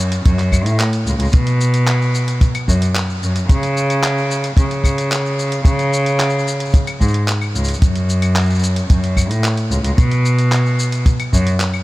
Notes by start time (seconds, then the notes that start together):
Already playing: F#2
0.12 closed hi-hat, shaker
0.26 F#2, kick, closed hi-hat, shaker
0.39 clap, closed hi-hat, shaker
0.52 kick, claves, shaker
0.65 A2, closed hi-hat, shaker
0.80 clap, closed hi-hat, shaker
0.93 closed hi-hat, shaker
1.06 C#2, shaker
1.19 C#2, closed hi-hat, shaker
1.22 shaker
1.25 shaker
1.27 shaker
1.29 shaker
1.31 closed hi-hat, shaker
1.34 B2, kick, shaker
1.47 closed hi-hat, shaker
1.61 shaker
1.74 closed hi-hat, shaker
1.87 clap, closed hi-hat, shaker
2.01 shaker
2.15 shaker
2.28 closed hi-hat, shaker
2.41 kick, closed hi-hat, shaker
2.55 closed hi-hat, claves, shaker
2.68 F#2, kick, shaker
2.82 closed hi-hat, shaker
2.95 clap, closed hi-hat, shaker
3.10 shaker
3.22 F#2, shaker
3.36 closed hi-hat, shaker
3.49 C#3, kick, closed hi-hat, shaker
3.63 closed hi-hat, shaker
3.77 shaker
3.90 closed hi-hat, claves, shaker
4.03 clap, closed hi-hat, shaker
4.18 shaker
4.31 shaker
4.44 closed hi-hat, shaker
4.57 C#3, kick, closed hi-hat, shaker
4.71 closed hi-hat, shaker
4.84 kick, claves, shaker
4.98 closed hi-hat, shaker
5.12 clap, closed hi-hat, shaker
5.26 shaker
5.39 shaker
5.52 closed hi-hat, shaker
5.65 C#3, kick, closed hi-hat, shaker
5.79 closed hi-hat, shaker
5.93 shaker
6.06 closed hi-hat, shaker
6.20 clap, closed hi-hat, shaker
6.30 shaker
6.39 shaker
6.47 shaker
6.60 closed hi-hat, shaker
6.65 shaker
6.70 kick, shaker
6.74 closed hi-hat, shaker
6.87 closed hi-hat, claves, shaker
7.01 G#2, kick, shaker
7.08 shaker
7.14 closed hi-hat
7.28 clap, closed hi-hat, shaker
7.41 claves, shaker
7.55 C#2, shaker
7.64 shaker
7.69 closed hi-hat, shaker
7.74 shaker
7.82 F#2, kick, closed hi-hat, shaker
7.96 closed hi-hat, shaker
8.09 shaker
8.22 closed hi-hat, claves, shaker
8.36 clap, closed hi-hat, shaker
8.41 shaker
8.45 shaker
8.50 shaker
8.54 shaker
8.59 shaker
8.63 shaker
8.76 closed hi-hat, shaker
8.90 F#2, kick, closed hi-hat, shaker
9.04 closed hi-hat, shaker
9.17 kick, claves, shaker
9.30 A2, closed hi-hat, shaker
9.44 clap, closed hi-hat, shaker
9.57 closed hi-hat, shaker
9.71 C#2, shaker
9.84 C#2, closed hi-hat, shaker
9.98 B2, kick, closed hi-hat, shaker
10.12 closed hi-hat, shaker
10.25 shaker
10.39 closed hi-hat, shaker
10.52 clap, shaker
10.66 shaker
10.79 shaker
10.92 closed hi-hat, shaker
11.06 kick, closed hi-hat, shaker
11.20 closed hi-hat, claves, shaker
11.33 F#2, kick, shaker
11.47 closed hi-hat, shaker
11.60 clap, closed hi-hat, shaker
11.74 claves, shaker